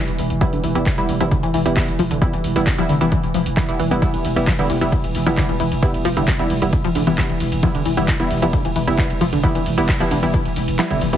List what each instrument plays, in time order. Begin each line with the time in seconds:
Already playing: ambient pad E3, synth stab G3 B3 E4
0.08 808-style bass E1, closed hi-hat
0.19 808-style bass E1, open hi-hat
0.30 808-style bass E1, closed hi-hat
0.41 synth arpeggio sound F3, synth stab G3 B3 E4, kick, closed hi-hat
0.53 808-style bass E1, synth arpeggio sound D3, closed hi-hat
0.64 808-style bass E1, synth arpeggio sound E3, open hi-hat
0.75 808-style bass E1, synth arpeggio sound E3, synth stab G3 B3 E4, closed hi-hat
0.86 kick, clap, closed hi-hat
0.98 808-style bass E1, synth stab G3 B3 E4, closed hi-hat
1.09 808-style bass E1, open hi-hat
1.21 808-style bass E1, synth arpeggio sound F3, synth stab G3 B3 E4, closed hi-hat
1.31 synth arpeggio sound D3, kick, closed hi-hat
1.43 808-style bass E1, synth arpeggio sound E3, closed hi-hat
1.54 808-style bass E1, synth arpeggio sound E3, open hi-hat
1.66 808-style bass E1, synth stab G3 B3 E4, closed hi-hat
1.76 synth stab G3 B3 E4, kick, clap, closed hi-hat
1.88 808-style bass E1, closed hi-hat
1.99 808-style bass E1, synth arpeggio sound F3, open hi-hat
2.11 808-style bass E1, synth arpeggio sound D3, closed hi-hat
2.22 synth arpeggio sound E3, synth stab G3 B3 E4, kick, closed hi-hat
2.33 808-style bass E1, synth arpeggio sound E3, closed hi-hat
2.44 808-style bass E1, open hi-hat
2.56 808-style bass E1, synth stab G3 B3 E4, closed hi-hat
2.67 kick, clap, closed hi-hat
2.78 808-style bass E1, synth arpeggio sound F3, synth stab G3 B3 E4, closed hi-hat
2.89 808-style bass E1, synth arpeggio sound D3, open hi-hat
3.01 808-style bass E1, synth arpeggio sound E3, synth stab G3 B3 E4, closed hi-hat
3.12 synth arpeggio sound E3, kick, closed hi-hat
3.24 808-style bass E1, closed hi-hat
3.34 808-style bass E1, synth arpeggio sound F3, open hi-hat
3.46 808-style bass E1, closed hi-hat
3.57 synth arpeggio sound E3, synth stab G3 B3 E4, kick, clap, closed hi-hat
3.69 808-style bass E1, synth arpeggio sound E3, synth stab G3 B3 E4, closed hi-hat
3.79 808-style bass E1, synth arpeggio sound E3, open hi-hat
3.91 808-style bass E1, synth stab G3 B3 E4, synth arpeggio sound B3, closed hi-hat
4.02 synth arpeggio sound E3, synth stab G3 B3 E4, kick, closed hi-hat, ride
4.14 808-style bass E1, closed hi-hat, ride
4.25 808-style bass E1, open hi-hat, ride
4.36 808-style bass E1, synth stab G3 B3 E4, closed hi-hat, ride
4.47 synth arpeggio sound F3, kick, clap, closed hi-hat, ride
4.59 808-style bass E1, synth arpeggio sound D3, synth stab G3 B3 E4, closed hi-hat, ride
4.70 808-style bass E1, synth arpeggio sound E3, open hi-hat, ride
4.81 808-style bass E1, synth arpeggio sound E3, synth stab G3 B3 E4, closed hi-hat, ride
4.92 kick, closed hi-hat, ride
5.04 808-style bass E1, closed hi-hat, ride
5.15 808-style bass E1, open hi-hat, ride
5.26 808-style bass E1, synth arpeggio sound F3, synth stab G3 B3 E4, closed hi-hat, ride
5.37 synth arpeggio sound D3, synth stab G3 B3 E4, kick, clap, closed hi-hat, ride
5.49 808-style bass E1, synth arpeggio sound E3, closed hi-hat, ride
5.60 808-style bass E1, synth arpeggio sound E3, open hi-hat, ride
5.72 808-style bass E1, closed hi-hat, ride
5.83 synth stab G3 B3 E4, kick, closed hi-hat, ride
5.94 808-style bass E1, closed hi-hat, ride
6.05 808-style bass E1, synth arpeggio sound F3, open hi-hat, ride
6.17 808-style bass E1, synth arpeggio sound D3, synth stab G3 B3 E4, closed hi-hat, ride
6.28 synth arpeggio sound E3, kick, clap, closed hi-hat, ride
6.39 808-style bass E1, synth arpeggio sound E3, synth stab G3 B3 E4, closed hi-hat, ride
6.50 808-style bass E1, open hi-hat, ride
6.62 808-style bass E1, synth stab G3 B3 E4, closed hi-hat, ride
6.73 kick, closed hi-hat, ride
6.84 808-style bass E1, synth arpeggio sound F3, closed hi-hat, ride
6.95 808-style bass E1, synth arpeggio sound D3, open hi-hat, ride
7.07 808-style bass E1, synth arpeggio sound E3, synth stab G3 B3 E4, closed hi-hat, ride
7.18 synth arpeggio sound E3, synth stab G3 B3 E4, kick, clap, closed hi-hat, ride
7.30 808-style bass E1, closed hi-hat, ride
7.40 808-style bass E1, open hi-hat, ride
7.52 808-style bass E1, closed hi-hat, ride
7.63 synth arpeggio sound F3, synth stab G3 B3 E4, kick, closed hi-hat, ride
7.75 808-style bass E1, synth arpeggio sound D3, closed hi-hat, ride
7.86 808-style bass E1, synth arpeggio sound E3, open hi-hat, ride
7.97 808-style bass E1, synth arpeggio sound E3, synth stab G3 B3 E4, closed hi-hat, ride
8.08 kick, clap, closed hi-hat, ride
8.20 808-style bass E1, synth stab G3 B3 E4, closed hi-hat, ride
8.31 808-style bass E1, open hi-hat, ride
8.42 808-style bass E1, synth arpeggio sound F3, synth stab G3 B3 E4, closed hi-hat, ride
8.53 synth arpeggio sound D3, kick, closed hi-hat, ride
8.65 808-style bass E1, synth arpeggio sound E3, closed hi-hat, ride
8.76 808-style bass E1, synth arpeggio sound E3, open hi-hat, ride
8.87 808-style bass E1, synth stab G3 B3 E4, closed hi-hat, ride
8.98 synth stab G3 B3 E4, kick, clap, closed hi-hat, ride
9.10 808-style bass E1, closed hi-hat, ride
9.21 808-style bass E1, synth arpeggio sound F3, open hi-hat, ride
9.33 808-style bass E1, synth arpeggio sound D3, closed hi-hat, ride
9.43 synth arpeggio sound E3, synth stab G3 B3 E4, kick, closed hi-hat, ride
9.55 808-style bass E1, synth arpeggio sound E3, closed hi-hat, ride
9.66 808-style bass E1, open hi-hat, ride
9.78 808-style bass E1, synth stab G3 B3 E4, closed hi-hat, ride
9.89 kick, clap, closed hi-hat, ride
10.00 808-style bass E1, synth arpeggio sound F3, synth stab G3 B3 E4, closed hi-hat, ride
10.11 808-style bass E1, synth arpeggio sound D3, open hi-hat, ride
10.23 808-style bass E1, synth arpeggio sound E3, synth stab G3 B3 E4, closed hi-hat, ride
10.34 synth arpeggio sound E3, kick, closed hi-hat, ride
10.45 808-style bass E1, closed hi-hat, ride
10.56 808-style bass E1, open hi-hat, ride
10.68 808-style bass E1, closed hi-hat, ride
10.79 synth arpeggio sound F3, synth stab G3 B3 E4, clap, closed hi-hat, ride
10.90 808-style bass E1, synth arpeggio sound D3, synth stab G3 B3 E4, closed hi-hat, ride
11.01 808-style bass E1, synth arpeggio sound E3, open hi-hat, ride
11.13 808-style bass E1, synth arpeggio sound E3, synth stab G3 B3 E4, closed hi-hat, ride